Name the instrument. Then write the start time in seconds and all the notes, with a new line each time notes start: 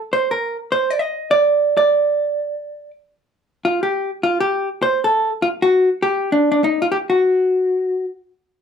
hollow-body jazz guitar
0.13 C5
0.31 A#4
0.72 C5
0.90 D5
0.99 D#5
1.31 D5
1.77 D5
3.65 F4
3.83 G4
4.23 F4
4.40 G4
4.82 C5
5.04 A4
5.42 F4
5.62 F#4
6.03 G4
6.32 D4
6.52 D4
6.64 D#4
6.82 F4
6.92 G4
7.10 F#4